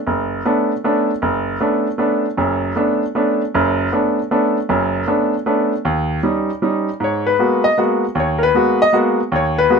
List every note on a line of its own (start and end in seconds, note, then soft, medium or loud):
0.07 0.40 F#1 medium
0.45 0.71 A3 soft
0.45 0.71 B3 soft
0.45 0.71 C#4 soft
0.45 0.72 D4 medium
0.84 1.10 A3 soft
0.84 1.10 B3 soft
0.84 1.10 C#4 soft
0.84 1.10 D4 medium
1.22 1.55 F#1 medium
1.60 1.86 A3 soft
1.60 1.86 B3 soft
1.60 1.87 C#4 soft
1.60 1.87 D4 medium
1.98 2.25 A3 medium
1.98 2.25 B3 soft
1.98 2.25 C#4 soft
1.98 2.25 D4 medium
2.37 2.71 F#1 medium
2.37 2.71 F#2 medium
2.76 3.02 A3 soft
2.76 3.02 B3 soft
2.76 3.02 C#4 soft
2.76 3.03 D4 medium
3.15 3.41 A3 soft
3.15 3.41 B3 soft
3.15 3.41 C#4 soft
3.15 3.41 D4 medium
3.54 3.87 F#1 medium
3.54 3.87 F#2 medium
3.92 4.18 A3 soft
3.92 4.18 B3 soft
3.92 4.18 C#4 soft
3.92 4.19 D4 medium
4.31 4.57 A3 medium
4.31 4.57 B3 soft
4.31 4.57 C#4 soft
4.31 4.57 D4 medium
4.69 5.02 F#1 medium
4.69 5.02 F#2 medium
5.07 5.33 A3 soft
5.07 5.34 B3 soft
5.07 5.34 C#4 soft
5.07 5.34 D4 medium
5.46 5.72 A3 medium
5.46 5.72 B3 soft
5.46 5.72 C#4 soft
5.46 5.73 D4 medium
5.85 6.18 D#2 medium
6.23 6.49 G3 medium
6.23 6.50 C#4 soft
6.23 6.50 D#4 medium
6.62 6.88 G3 soft
6.62 6.88 C#4 soft
6.62 6.88 D#4 medium
7.00 7.34 G#2 medium
7.00 7.26 C#5 medium
7.27 7.62 B4 medium
7.39 7.65 G#3 soft
7.39 7.65 A#3 soft
7.39 7.65 B3 soft
7.39 7.66 F#4 medium
7.64 7.77 D#5 medium
7.78 8.04 G#3 soft
7.78 8.04 A#3 soft
7.78 8.04 B3 soft
7.78 8.04 F#4 soft
8.15 8.49 D#2 medium
8.20 8.42 C#5 medium
8.38 8.40 A#4 medium
8.43 8.78 B4 medium
8.54 8.81 G#3 soft
8.54 8.81 A#3 soft
8.54 8.81 B3 soft
8.54 8.81 F#4 medium
8.82 8.94 D#5 loud
8.93 9.19 G#3 medium
8.93 9.19 A#3 soft
8.93 9.20 B3 medium
8.93 9.19 F#4 medium
9.32 9.65 D#2 medium
9.32 9.58 C#5 medium
9.58 9.79 B4 medium
9.70 9.79 G#3 soft
9.70 9.79 A#3 soft
9.70 9.79 B3 soft
9.70 9.79 F#4 medium